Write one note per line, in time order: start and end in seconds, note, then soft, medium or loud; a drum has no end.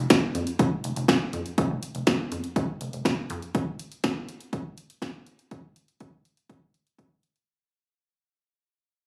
0.10 0.20 F1 loud
0.10 kick loud
0.10 snare loud
0.10 closed hi-hat medium
0.35 0.45 F2 medium
0.35 closed hi-hat medium
0.47 closed hi-hat medium
0.59 0.69 F1 loud
0.59 kick loud
0.59 closed hi-hat medium
0.84 0.94 F1 medium
0.84 closed hi-hat medium
0.96 1.06 F1 loud
0.96 closed hi-hat medium
1.08 1.18 F1 loud
1.08 kick loud
1.08 snare loud
1.08 closed hi-hat medium
1.33 1.43 F2 medium
1.33 closed hi-hat medium
1.46 closed hi-hat soft
1.58 1.68 F1 loud
1.58 kick loud
1.58 closed hi-hat medium
1.70 1.80 F1 loud
1.83 closed hi-hat medium
1.95 2.04 F1 medium
1.95 closed hi-hat soft
2.07 2.17 F1 loud
2.07 kick loud
2.07 snare loud
2.07 closed hi-hat medium
2.32 2.41 F2 medium
2.32 closed hi-hat medium
2.44 closed hi-hat medium
2.56 2.66 F1 loud
2.56 kick loud
2.56 closed hi-hat medium
2.81 2.91 F1 loud
2.81 closed hi-hat medium
2.93 3.03 F1 medium
2.93 closed hi-hat medium
3.05 3.15 F1 loud
3.05 kick medium
3.05 snare loud
3.05 closed hi-hat medium
3.30 3.40 F2 loud
3.30 closed hi-hat medium
3.42 closed hi-hat soft
3.55 kick loud
3.55 closed hi-hat medium
3.79 closed hi-hat medium
3.92 closed hi-hat soft
4.04 kick loud
4.04 snare loud
4.04 closed hi-hat medium
4.29 closed hi-hat medium
4.41 closed hi-hat medium
4.53 kick loud
4.53 closed hi-hat medium
4.78 closed hi-hat medium
4.90 closed hi-hat medium
5.02 kick medium
5.02 snare loud
5.02 closed hi-hat medium
5.26 closed hi-hat medium
5.39 closed hi-hat soft
5.51 kick loud
5.51 closed hi-hat medium
5.76 closed hi-hat medium
5.88 closed hi-hat soft
6.00 kick loud
6.00 closed hi-hat medium
6.25 closed hi-hat medium
6.37 closed hi-hat medium
6.50 kick loud
6.50 closed hi-hat medium
6.74 closed hi-hat medium
6.87 closed hi-hat medium
6.98 kick loud
6.98 closed hi-hat medium
7.23 closed hi-hat medium
7.36 closed hi-hat soft